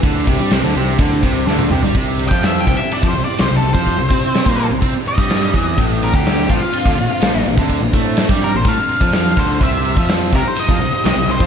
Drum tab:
RD |x-x-x-x-x-x-----|x-x-x-x-x-x-x-x-|x-x-x-x-x-x-x-x-|x-x-x-x-x-x-x-x-|
SD |----o-------o---|----o-------o---|----o-------o---|----o-------o---|
T1 |-------------o--|----------------|----------------|----------------|
T2 |--------------o-|----------------|----------------|----------------|
FT |---------------o|----------------|----------------|----------------|
BD |o-o-----o-o-----|o--o--o--o-----o|o-o--o--o--o--o-|o--o--o--o-----o|

RD |x-x-x-x-x-x-x-x-|x-x-x-x-x-x-x-x-|
SD |----o-------o---|----o-------o---|
T1 |----------------|----------------|
T2 |----------------|----------------|
FT |----------------|----------------|
BD |o-o--o--o--o--o-|o--o--o--o-----o|